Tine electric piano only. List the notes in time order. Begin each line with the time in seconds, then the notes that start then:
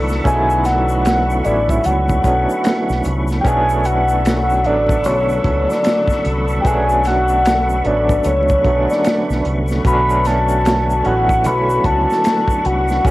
Already playing: D3 F#3 A3 B3 E4
0.24 F#3 A3 B3 C#4 D#4
0.34 E4
1.43 F#3 A3 B3 C#4 E4
2.24 F#3 A3 B3 C#4 D4
3.44 F#3 A3 B3 C#4 D4
4.63 D3 F#3 A3 B3 D4
6.63 F#3 A3 B3 C#4 D4
7.84 D3 F#3 A3 B3 C#4
7.94 D4
8.64 D3 F#3 A3 B3 C#4
8.74 D4
9.84 F#3 A3 B3 C#4
9.94 D4
11.04 F#3 A3 B3 C#4 E4
13.04 F#3 A3 B3 C#4